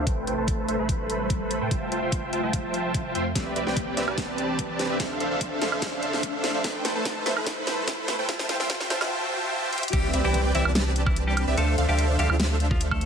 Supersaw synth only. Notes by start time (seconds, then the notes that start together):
0.07 A3 A4 B4 C5
0.27 A3 A4 B4 C5 G5
0.38 A3 A4 B4 C5 A5
0.68 A3 A4 B4 C5 E5
0.79 A3 A4 B4 C5 B5
1.61 A3 A4 B4 C5 G5
1.71 F4 C5 E5 G5 A5
1.92 F4 C5 E5 G5 A5
2.02 F4 C5 E5 G5 C6
2.33 F4 C5 E5 G5 A5
2.43 F4 C5 E5 G5 A5
3.15 F4 C5 E5 G5 C6
3.35 C4 G4 B4 D5 E5
3.56 C4 G4 B4 D5 E5
3.67 C4 G4 B4 D5 G5
3.97 C4 G4 B4 D5 E5
4.08 C4 G4 B4 D5 A5
4.90 C4 G4 B4 D5 E5
5.00 D4 A4
5.20 D4 A4 C5 E5 F5
5.31 D4 A4 C5 E5 F5
5.62 D4 A4 C5 E5 F5
5.72 D4 A4 C5 E5 F5
6.54 D4 A4 C5 E5 F5
6.64 A3 B4 G5
6.85 A3 A4 B4 C5 G5
6.95 A3 A4 B4 C5 A5
7.26 A3 A4 B4 C5 E5
7.36 A3 A4 B4 C5 B5
8.19 A3 A4 B4 C5 G5
8.29 F4 C5 E5 G5 A5
8.49 F4 C5 E5 G5 A5
8.60 F4 C5 E5 G5 C6
8.90 F4 C5 E5 G5 A5
9.01 F4 C5 E5 G5 A5
9.73 F4 C5 E5 G5 C6
9.93 C4 G4 B4 D5 E5
10.14 C4 G4 B4 D5 E5
10.24 C4 G4 B4 D5 G5
10.55 C4 G4 B4 D5 E5
10.66 C4 G4 B4 D5 A5
11.48 C4 G4 B4 D5 E5
11.58 D4 A4 C5 E5 F5
11.78 D4 A4 C5 E5 F5
11.89 D4 A4 C5 E5 F5
12.19 D4 A4 C5 E5 F5
12.30 D4 A4 C5 E5 F5